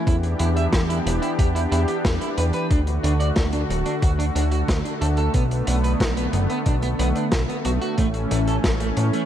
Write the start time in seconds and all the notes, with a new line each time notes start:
Already playing: E3
0.07 E2 B3 D4 E4 G4, kick, closed hi-hat
0.23 closed hi-hat
0.39 E2 E4, closed hi-hat
0.56 E5, closed hi-hat
0.72 E2 E4, kick, snare, closed hi-hat
0.89 E4, closed hi-hat
1.06 E1, closed hi-hat
1.22 E4, closed hi-hat
1.39 E2 G4, kick, closed hi-hat
1.55 E4, closed hi-hat
1.72 E2 E4, closed hi-hat
1.88 G4, closed hi-hat
2.05 E2, kick, snare, closed hi-hat
2.21 E4, closed hi-hat
2.38 E2 B4, closed hi-hat
2.53 B4, closed hi-hat
2.70 D2 D3 A3 D4 F#4, kick, closed hi-hat
2.87 closed hi-hat
3.03 D2 D4, closed hi-hat
3.20 D5, closed hi-hat
3.36 D2 D4, kick, snare, closed hi-hat
3.53 D4, closed hi-hat
3.70 D1, closed hi-hat
3.86 D4, closed hi-hat
4.02 D2 F#4, kick, closed hi-hat
4.19 D4, closed hi-hat
4.35 D2 D4, closed hi-hat
4.51 F#4, closed hi-hat
4.68 D2, kick, snare, closed hi-hat
4.85 D4, closed hi-hat
5.01 D2 A4, closed hi-hat
5.17 A4, closed hi-hat
5.34 B1 B3, kick, closed hi-hat
5.51 closed hi-hat
5.67 B1 B3, closed hi-hat
5.84 B4, closed hi-hat
6.00 B1 B3, kick, snare, closed hi-hat
6.17 B3, closed hi-hat
6.33 F#1, closed hi-hat
6.50 B3, closed hi-hat
6.66 B1 D4, kick, closed hi-hat
6.82 B3, closed hi-hat
6.99 B1 B3, closed hi-hat
7.15 D4, closed hi-hat
7.32 B1, kick, snare, closed hi-hat
7.49 B3, closed hi-hat
7.65 B1 F#4, closed hi-hat
7.81 F#4, closed hi-hat
7.98 A1 E3 A3 C#4, kick, closed hi-hat
8.14 closed hi-hat
8.31 A1 A3, closed hi-hat
8.47 A4, closed hi-hat
8.64 A1 A3, kick, snare, closed hi-hat
8.80 A3, closed hi-hat
8.97 A2, closed hi-hat
9.13 A3, closed hi-hat